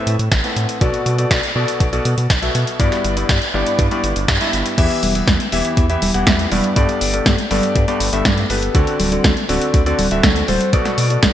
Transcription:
Already playing: A2 C4 A4 B4 E5
0.07 A2, closed hi-hat
0.19 A2, closed hi-hat
0.32 A1, kick, snare, closed hi-hat
0.44 A2 C4 A4 B4 F#5, closed hi-hat
0.56 A2, closed hi-hat
0.69 closed hi-hat
0.81 B1 B2 B3 F#4 A4 D5, kick, closed hi-hat
0.94 closed hi-hat
1.06 B2, closed hi-hat, high conga
1.18 B2 B3 F#4 A4 D5, closed hi-hat
1.31 B1, kick, snare, closed hi-hat
1.43 closed hi-hat
1.56 B2 B3 F#4 A4 D5
1.68 closed hi-hat
1.80 B1, kick, closed hi-hat
1.93 B2 B3 F#4 A4 D5, closed hi-hat
2.05 B2, closed hi-hat, high conga
2.18 B2, closed hi-hat
2.30 B1, kick, snare, closed hi-hat
2.42 B2 B3 F#4 A4 E5, closed hi-hat
2.55 B2, closed hi-hat, high conga
2.67 closed hi-hat
2.80 G2 B3 E4 G4 D5, kick, closed hi-hat
2.92 snare, closed hi-hat
3.04 G1, closed hi-hat
3.17 G2 B3 E4 G4 D5, closed hi-hat
3.29 G2, kick, snare, closed hi-hat
3.42 closed hi-hat
3.54 G1 G2 B3 E4 G4 D5, high conga
3.67 closed hi-hat
3.79 G2, kick, closed hi-hat
3.91 G2 B3 E4 G4 D5, closed hi-hat
4.04 G1, closed hi-hat
4.16 G1, closed hi-hat
4.28 G2, kick, snare, closed hi-hat
4.41 G2 B3 E4 G4 E5, closed hi-hat
4.53 G1, closed hi-hat
4.66 closed hi-hat
4.78 E2 E3 B3 E4 G4 E5, kick, closed hi-hat, crash
4.90 closed hi-hat
5.03 E1, open hi-hat, high conga
5.15 E3 B3 E4 G4 E5, closed hi-hat
5.28 E2, kick, snare, closed hi-hat
5.40 closed hi-hat
5.52 E1 E3 B3 E4 G4 E5, open hi-hat
5.65 closed hi-hat
5.77 E2, kick, closed hi-hat
5.90 E3 B3 E4 G4 E5, closed hi-hat
6.02 E1, open hi-hat, high conga
6.14 E1 E3 B3 E4 G4 F#5, closed hi-hat
6.27 E2 E3 B3 E4 G4 E5, kick, snare, closed hi-hat
6.39 closed hi-hat
6.52 E1 G2 B3 E4 G4 D5, open hi-hat, high conga
6.64 closed hi-hat
6.76 G2 B3 G4 A4 D5, kick, closed hi-hat
6.89 closed hi-hat
7.01 G1, open hi-hat
7.14 G2 B3 G4 A4 D5, closed hi-hat
7.26 G2, kick, snare, closed hi-hat
7.38 closed hi-hat
7.51 G1 G2 B3 G4 A4 D5, open hi-hat, high conga
7.63 closed hi-hat
7.76 G2, kick, closed hi-hat
7.88 G2 B3 G4 A4 D5, closed hi-hat
8.00 G1, open hi-hat
8.13 G1 G2 B3 G4 A4 E5, closed hi-hat
8.25 G2 D5, kick, snare, closed hi-hat
8.38 closed hi-hat
8.50 G1 B3 G4 A4 B4, open hi-hat
8.62 closed hi-hat
8.75 D2 D3 C4 F#4 A4 D5, kick, closed hi-hat
8.87 closed hi-hat
8.99 D1, open hi-hat, high conga
9.12 D3 C4 F#4 A4 D5, closed hi-hat
9.24 D2, kick, snare, closed hi-hat
9.37 closed hi-hat
9.49 D1 D3 C4 F#4 A4 D5, open hi-hat
9.62 closed hi-hat
9.74 D2, kick, closed hi-hat
9.86 D3 C4 F#4 A4 D5, closed hi-hat
9.99 D1, open hi-hat, high conga
10.11 D1 D3 C4 F#4 A4 E5, closed hi-hat
10.23 D2 D3 C4 F#4 A4 D5, kick, snare, closed hi-hat
10.36 closed hi-hat
10.48 D1 C4 F#4 A4 C5, open hi-hat, high conga
10.61 closed hi-hat
10.73 B1 B2 B3 F#4 A4 D5, kick, closed hi-hat
10.85 snare, closed hi-hat
10.98 B2, open hi-hat
11.10 B2 B3 F#4 A4 D5, closed hi-hat
11.23 B1, kick, snare, closed hi-hat

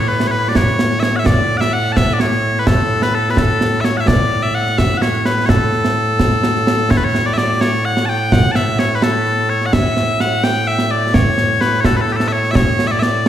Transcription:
Already playing: A2
0.09 B4
0.20 snare
0.28 B4 C#5
0.49 D5
0.55 C#5, concert bass drum, snare
0.68 snare
0.79 snare
0.91 snare
1.00 C#5 E5, snare
1.16 E5 F#5
1.26 D5, concert bass drum, snare
1.57 E5 F#5
1.61 snare
1.73 F#5
1.92 A5
1.97 E5, concert bass drum, snare
2.08 snare
2.13 D5
2.20 C#5, snare
2.32 snare
2.59 B4
2.67 A4, concert bass drum, snare
3.02 B4, snare
3.14 A4
3.30 B4
3.37 A4, concert bass drum, snare
3.49 snare
3.61 snare
3.73 snare
3.81 C#5 E5, snare
3.97 E5 F#5
4.07 D5, concert bass drum, snare
4.43 E5
4.55 F#5
4.67 snare
4.78 E5, concert bass drum, snare
4.90 snare
4.98 F#5
5.02 C#5, snare
5.14 snare
5.25 B4, snare
5.46 A4 C#5, concert bass drum, snare
5.72 snare
5.85 snare
6.20 concert bass drum, snare
6.32 snare
6.43 snare
6.56 snare
6.67 snare
6.90 C#5, concert bass drum, snare
6.97 B4
7.05 C#5
7.15 snare
7.26 D5
7.34 D5 E5
7.38 snare
7.61 C#5, snare
7.85 F#5
7.97 snare
8.05 G5 A5
8.32 F#5, concert bass drum, snare
8.52 A5, snare
8.56 E5
8.79 C#5, snare
8.95 B4
9.02 A4, snare
9.26 snare
9.49 C#5
9.61 snare
9.66 F#5
9.73 E5, concert bass drum, snare
9.97 snare
10.20 F#5, snare
10.44 G5, snare
10.67 E5
10.79 snare
10.91 D5
11.14 C#5, concert bass drum, snare
11.38 snare
11.61 B4, snare
11.81 C#5, concert bass drum, snare
11.85 A4
11.96 B4
12.01 A4
12.08 snare
12.12 G4 A4
12.20 snare
12.28 E5
12.32 C#5
12.44 snare
12.51 E5
12.55 C#5, concert bass drum, snare
12.79 snare
12.87 E5
12.91 D5
12.99 D5 E5, snare

